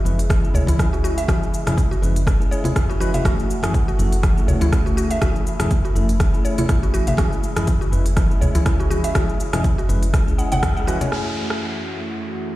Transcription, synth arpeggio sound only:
0.55 C#5
0.69 E4
0.93 F#4
1.04 F#4
1.18 E5
1.28 F#4
1.91 F#4
2.51 C#5
2.65 E4
2.90 F#4
3.00 F#4
3.14 E5
3.25 F#4
3.88 F#4
4.48 C#5
4.62 E4
4.86 F#4
4.97 F#4
5.11 E5
5.22 F#4
5.85 F#4
6.45 C#5
6.59 E4
6.83 F#4
6.94 F#4
7.08 E5
7.18 F#4
7.81 F#4
8.41 C#5
8.55 E4
8.80 F#4
8.90 F#4
9.04 E5
9.15 F#4
9.78 F#4
10.38 F#5
10.52 F#5
10.77 F#5
10.87 F#4
11.01 C#5

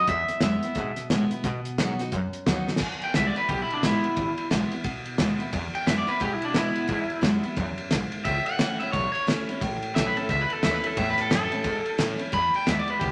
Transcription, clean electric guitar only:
0.09 E5
0.43 E5
3.04 G5
3.15 E5
3.27 D5
3.38 B4
3.49 G4
3.62 E4
3.73 D4
3.84 E4
5.75 G5
5.87 E5
5.98 D5
6.08 B4
6.22 G4
6.33 E4
6.45 D4
6.56 E4
8.25 E5
8.47 F#5
8.80 E5
8.92 C#5
9.12 C#5
9.95 E5
10.07 B4
10.17 A4
10.30 E5
10.41 B4
10.53 A4
10.64 E5
10.74 B4
10.86 A4
10.97 E5
11.10 B4
11.21 A4
11.32 A4
12.34 B5
12.56 G5
12.69 E5
12.79 D5
12.90 B4
12.99 G4

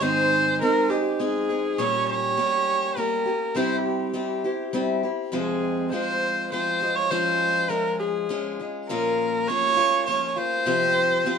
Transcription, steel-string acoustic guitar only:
0.00 G#2 D#3 G#3 C4 D#4 G#4
0.61 G#3 C4 D#4 G#4
0.90 G#3 C4 D#4 G#4
1.19 G#3 C4 D#4 G#4
1.49 G#3 C4 D#4 G#4
1.78 A#2 G3 A#3 C#4 G4
2.37 G3 A#3 C#4 G4
2.96 G3 A#3 C#4 G4
3.26 A#3 C#4 G4
3.55 C3 G3 C4 E4 G4
4.13 G3 C4 E4 G4
4.44 C4 E4 G4
4.73 G3 C4 E4 G4
5.03 C4 E4 G4
5.32 F2 C3 F3 G#3 C4 F4
5.92 F3 G#3 C4 F4
6.52 F3 G#3 C4 F4
6.81 F3 G#3 C4 F4
7.11 F3 G#3 C#4 F4
7.69 F3 G#3 C#4 F4
8.29 F3 G#3 C#4 F4
8.59 G#3 C#4 F4
8.89 A#2 F3 A#3 C#4 F4
9.48 F3 A#3 C#4 F4
9.77 A#3 C#4 F4
10.07 F3 A#3 C#4 F4
10.36 A#3 C#4 F4
10.66 C3 F3 C4 F4 G4
11.24 F3 C4 F4 G4

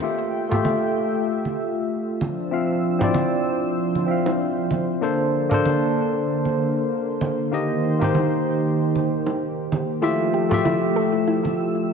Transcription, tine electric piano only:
0.01 A3 F4 G4 E5
0.49 A3 F4 G4
0.54 E5
2.51 C4 F4 E5 F5
2.99 C4 E4 F4
3.04 D5
4.06 C4 F4 E5
4.11 F5
5.01 A#3 D4 A4 C5
5.49 A#3 D4 A4
5.54 C5
7.52 A#3 D#4 G4 D#5
7.99 A#3 D#4 G4
8.04 C5
10.02 A3 F4 G4 E5
10.49 A3 F4 G4
10.54 E5

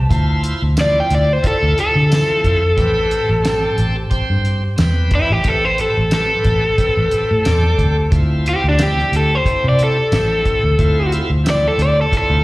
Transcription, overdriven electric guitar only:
Already playing: A5
0.81 D5
1.00 G5
1.15 D5
1.33 C5
1.47 A4
1.80 A4
5.15 E4
5.32 G4
5.48 A4
5.65 C5
5.81 A4
6.14 A4
8.49 G4
8.69 D4
8.83 G4
9.17 A4
9.35 C5
9.69 D5
9.84 A4
11.50 D5
11.68 A4
11.82 D5
12.01 A4
12.17 A4

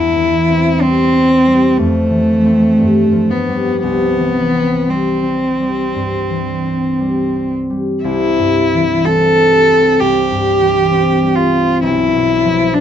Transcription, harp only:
Already playing: E2 G3 G4
0.16 E3
0.49 C4
0.82 G3
1.13 C4
1.46 G3
1.78 F2
2.10 E3
2.44 A3 C4
2.78 G2
3.12 F3
3.48 G3 B3
3.83 C2
4.19 E3
4.54 C4
4.89 G3
5.23 C4
5.60 G3
5.95 G2
6.30 E3
6.65 C4
7.00 G3
7.36 C4
7.70 G3
8.04 C2
8.38 G2
8.74 E3
9.09 C4
9.40 G3
9.71 C4
10.01 C2
10.31 G2
10.60 E3
10.91 C4
11.22 G3
11.54 C4
11.83 B1
12.15 B2
12.45 F3
12.75 D4

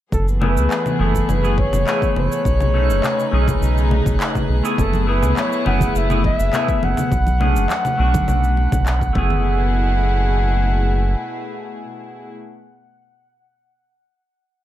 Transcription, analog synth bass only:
0.12 F#1
0.57 C#2
1.00 F#1
1.29 F#1
1.73 F#1
2.16 F#1
2.45 B1
2.90 F#1
3.33 B1
3.62 B1
4.06 B1
4.50 B1
4.78 F#1
5.23 C#2
5.66 F#1
5.95 F#1
6.40 F#1
6.83 F#1
7.12 B1
7.56 F#1
7.99 B1
8.28 B1
8.72 B1
9.16 F#1

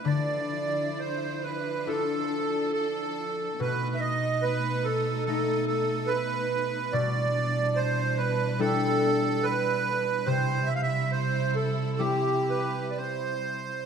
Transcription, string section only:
0.03 F3 D4 E4
1.87 A4
3.59 B2 A3 D#4
6.91 E3 G3 D4
10.25 C3 E4

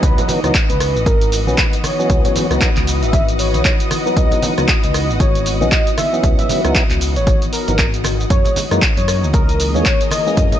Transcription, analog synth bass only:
0.03 C#2
0.44 C#2
0.70 C#2
0.96 G#1
1.47 B1
2.10 C#2
2.51 C#2
2.77 C#2
3.02 G#1
3.54 B1
4.17 C#2
4.58 C#2
4.83 C#2
5.09 G#1
5.61 B1
6.23 C#2
6.64 C#2
6.90 C#2
7.16 G#1
7.68 G#1
8.30 F#2
8.71 F#2
8.97 F#2
9.23 C#2
9.75 E2
10.37 F#2

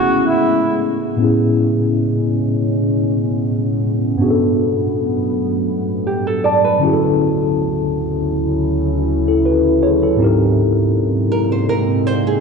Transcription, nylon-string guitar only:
6.07 G4
6.27 A4
6.44 D5
6.64 B4
11.32 A#4
11.52 C5
11.69 A#4
12.07 C5
12.27 G#4

